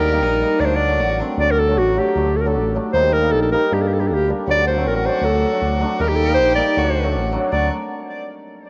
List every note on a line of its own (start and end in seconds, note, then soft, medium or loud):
0.00 0.22 D#2 medium
0.00 0.24 G4 loud
0.00 0.62 A#4 loud
0.11 0.38 G3 medium
0.11 0.27 A#3 medium
0.11 0.27 D#4 medium
0.20 0.44 A#1 medium
0.20 0.62 D#4 loud
0.40 0.66 G3 medium
0.40 0.51 A#3 medium
0.40 0.51 D#4 medium
0.60 0.99 D2 medium
0.60 0.87 F#3 medium
0.60 0.76 A3 medium
0.60 1.02 D4 medium
0.60 0.76 D4 medium
0.60 0.67 D5 medium
0.65 0.77 C5 medium
0.76 1.20 D5 loud
0.88 1.18 F#3 medium
0.88 1.04 A3 medium
0.88 1.05 D4 medium
0.98 1.22 A1 medium
0.98 1.21 F#4 medium
1.19 1.39 F#3 medium
1.19 1.29 A3 medium
1.19 1.30 C4 medium
1.19 1.39 D4 medium
1.37 1.77 D2 medium
1.37 1.67 F#3 medium
1.37 1.54 A3 medium
1.37 1.54 D4 medium
1.37 1.52 D5 loud
1.51 1.61 A#4 loud
1.59 1.80 A4 loud
1.68 1.95 F#3 medium
1.68 1.83 A3 medium
1.68 1.83 D4 medium
1.76 2.00 A1 loud
1.76 2.00 F#4 loud
1.97 2.14 F#3 medium
1.97 2.07 A3 medium
1.97 2.08 D4 medium
1.97 2.38 G4 medium
2.16 2.57 D2 medium
2.16 2.44 F#3 medium
2.16 2.31 A3 medium
2.16 2.31 D4 medium
2.37 2.43 A4 medium
2.41 2.73 F#3 medium
2.41 2.49 A#4 medium
2.46 2.60 A3 medium
2.46 2.60 D4 medium
2.46 2.74 A4 medium
2.56 2.79 A1 medium
2.74 2.99 F#3 medium
2.74 2.85 A3 medium
2.74 2.85 D4 medium
2.93 3.34 D#2 medium
2.93 3.20 G3 medium
2.93 3.08 A#3 medium
2.93 3.09 D#4 medium
2.93 3.15 C5 loud
3.13 3.33 A#4 loud
3.22 3.51 G3 medium
3.22 3.37 A#3 medium
3.22 3.38 D#4 medium
3.32 3.55 A#1 medium
3.32 3.41 A4 loud
3.42 3.51 A4 medium
3.52 3.69 G3 medium
3.52 3.61 A#3 medium
3.52 3.62 D#4 medium
3.52 3.75 A#4 loud
3.70 4.11 G2 loud
3.70 3.98 G3 medium
3.70 3.85 A#3 medium
3.70 3.86 D4 medium
3.70 3.83 G4 medium
3.81 3.89 A4 medium
3.87 3.95 G4 medium
3.93 4.01 A4 medium
3.99 4.27 G3 medium
3.99 4.14 A#3 medium
3.99 4.15 D4 medium
3.99 4.08 G4 medium
4.07 4.32 D2 medium
4.07 4.15 A4 medium
4.14 4.29 G4 medium
4.28 4.52 G3 medium
4.28 4.38 A#3 medium
4.28 4.39 D4 medium
4.47 4.87 D2 loud
4.47 4.75 F#3 medium
4.47 4.62 A3 medium
4.47 4.63 D4 medium
4.47 6.02 F#4 loud
4.47 4.67 D5 loud
4.67 4.89 C5 loud
4.76 5.03 F#3 medium
4.76 4.91 A3 medium
4.76 4.92 C4 medium
4.86 5.09 A1 loud
4.86 4.95 A#4 medium
4.96 5.07 A#4 medium
5.04 5.22 F#3 medium
5.04 5.14 A3 medium
5.04 5.15 D4 medium
5.04 5.26 C5 medium
5.22 5.45 D2 medium
5.22 5.51 F#3 medium
5.22 5.38 A3 medium
5.22 5.38 D4 medium
5.22 5.82 A4 medium
5.52 5.78 F#3 medium
5.52 5.67 A3 medium
5.52 5.68 D4 medium
5.62 5.85 D2 medium
5.79 6.05 F#3 medium
5.79 5.90 A3 medium
5.79 5.91 D4 loud
5.99 6.39 D#2 loud
5.99 6.27 G3 medium
5.99 6.15 A#3 medium
5.99 6.15 D#4 medium
5.99 6.79 G4 loud
5.99 6.10 A#4 loud
6.09 6.17 G4 medium
6.16 6.26 A4 medium
6.25 6.55 G3 medium
6.25 6.43 A#3 medium
6.25 6.34 A#4 medium
6.29 6.43 D#4 medium
6.34 6.61 A#1 medium
6.34 6.54 C5 loud
6.55 6.81 G3 medium
6.55 6.67 A#3 medium
6.55 6.67 D#4 medium
6.55 7.09 D5 loud
6.76 7.16 D2 medium
6.76 7.02 F#3 medium
6.76 6.91 A3 medium
6.76 6.91 D4 medium
6.76 7.34 F#4 loud
7.04 7.31 F#3 medium
7.04 7.19 A3 medium
7.04 7.19 D4 medium
7.15 7.37 A1 loud
7.32 7.51 F#3 medium
7.32 7.43 A3 medium
7.32 7.43 D4 medium
7.52 7.70 D2 loud
7.52 7.70 F#3 medium
7.52 7.70 A3 medium
7.52 7.70 D4 medium
7.52 7.71 F#4 medium
7.52 7.70 D5 medium